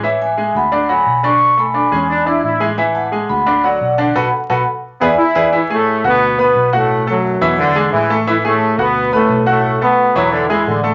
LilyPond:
<<
  \new Staff \with { instrumentName = "Vibraphone" } { \time 4/4 \key d \lydian \tempo 4 = 175 <cis'' e''>8 <e'' gis''>4 <fis'' b''>4 <gis'' b''>4 <a'' cis'''>8~ | <a'' cis'''>8 <gis'' b''>2 r4. | <e'' gis''>8 <fis'' a''>4 <fis'' b''>4 <d'' fis''>4 <fis'' a''>8 | <fis'' a'' b''>8 r8 <fis'' a'' b''>8 r4 <d'' e'' gis''>8 r8 <d'' e'' gis''>8 |
r1 | r1 | r1 | r1 | }
  \new Staff \with { instrumentName = "Grand piano" } { \time 4/4 \key d \lydian <e e' e''>4 <gis gis' gis''>4 <d d' d''>8 <fis fis' fis''>4 <d d' d''>8~ | <d d' d''>8 <a a' a''>8 <d' d'' d'''>8 <gis gis' gis''>4 <d' d'' d'''>4 <gis gis' gis''>8 | <e e' e''>4 <gis gis' gis''>4 <d d' d''>8 <fis fis' fis''>4 <d d' d''>8 | <fis' a' b'>8 r8 <fis' a' b'>8 r4 <e' gis' b'>8 r8 <e' gis' b'>8 |
<e e' e''>8 <a gis' gis''>4 <fis' fis'' fis'''>4 <b b' b''>4 <fis' fis'' fis'''>8~ | <fis' fis'' fis'''>8 <a a' a''>4 <e e' e''>4 <gis gis' gis''>4 <a a' a''>8 | <e e' e''>8 <a gis' gis''>4 <fis' fis'' fis'''>4 <b b' b''>4 <fis' fis'' fis'''>8~ | <fis' fis'' fis'''>8 <a a' a''>4 <e e' e''>4 <gis gis' gis''>4 <a a' a''>8 | }
  \new Staff \with { instrumentName = "Trombone section" } { \clef bass \time 4/4 \key d \lydian r1 | r4. cis'8 d'8 e'8 e'8. r16 | r1 | r2 r8 b8 e'4 |
r1 | r4. b,8 d4 e8. r16 | r1 | r4. fis8 d8 e8 d8. r16 | }
  \new Staff \with { instrumentName = "Trombone section" } { \clef bass \time 4/4 \key d \lydian r1 | r1 | r1 | r1 |
<e e'>8 <a, a>4 <b, b>4 <b, b>4 <a, a>8~ | <a, a>8 <fis, fis>2 r4. | <e e'>8 <a, a>4 <b, b>4 <a, a>4 <a, a>8~ | <a, a>8 <b, b>2 r4. | }
  \new Staff \with { instrumentName = "Fingered electric bass" } { \clef bass \time 4/4 \key d \lydian a,,4. d,4. b,,4~ | b,,4. e,4. a,,4~ | a,,4. d,4. b,,4 | b,,8 r8 b,,8 r4 e,8 r8 e,8 |
r4. d,4. b,,4~ | b,,4. e,4. a,,4~ | a,,4. d,4. b,,4~ | b,,4. e,4. a,,4 | }
>>